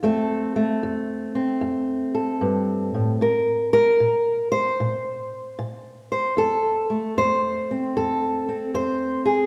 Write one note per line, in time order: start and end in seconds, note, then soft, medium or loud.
0.03 0.77 F2 medium
0.03 0.55 A3 medium
0.03 1.34 C4 medium
0.03 2.13 A4 medium
0.56 3.21 A3 medium
0.83 1.57 F2 medium
1.35 3.21 C4 medium
1.61 2.35 F2 medium
2.15 3.18 A4 medium
2.41 2.93 G2 medium
2.94 3.21 A2 medium
3.21 3.95 A#2 medium
3.21 3.72 A#4 medium
3.73 4.51 A#4 loud
4.00 4.74 A#2 medium
4.52 6.10 C5 loud
4.80 5.53 A#2 medium
5.59 6.32 A#2 medium
6.12 6.38 C5 medium
6.37 7.11 F2 medium
6.37 7.17 A4 medium
6.90 9.46 A3 soft
7.17 7.90 F2 medium
7.17 7.96 C5 loud
7.71 8.48 C4 soft
7.97 8.70 F2 medium
7.97 8.74 A4 medium
8.49 9.46 C4 soft
8.74 9.46 F2 medium
8.74 9.25 C5 medium
9.25 9.46 G#4 medium